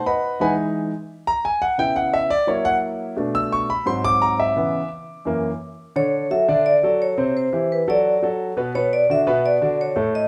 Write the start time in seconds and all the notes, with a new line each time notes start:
0.06 B4 D#5 F#5 B5
0.40 E3 G#3 D#4 B4 F#5 G#5 B5
1.27 A#5
1.45 G#5
1.62 F#5
1.78 C#3 B3 E4 G5
1.96 F#5
2.14 E5
2.30 D5
2.47 F#3 A#3 E4 C#5
2.65 F#5
3.17 B2 A3 D4
3.35 E6
3.52 C#6
3.70 B5
3.86 G#2 F#3 C4 C6
4.05 D6
4.22 A#5
4.40 E5
4.56 C#3 E3 B3
5.25 F#2 E3 A#3
5.96 D3 D4 C#5
6.31 F#3 F#4 A4 E5
6.48 D3 D4 D5
6.66 D5
6.83 F#3 F#4 A4
7.02 C#5
7.17 C3 C4 C5
7.37 C5
7.53 E3 E4 G4
7.72 B4
7.88 F#3 F#4 A4 D5
8.22 F#3 F#4 A4
8.57 B2 B3 B4
8.75 B2 B3 B4 C#5
8.93 D5
9.10 D3 D4 F#4 E5
9.27 B2 B3 B4
9.46 D5
9.62 D3 D4 F#4
9.81 C#5
9.96 A2 A3 A4
10.15 D#5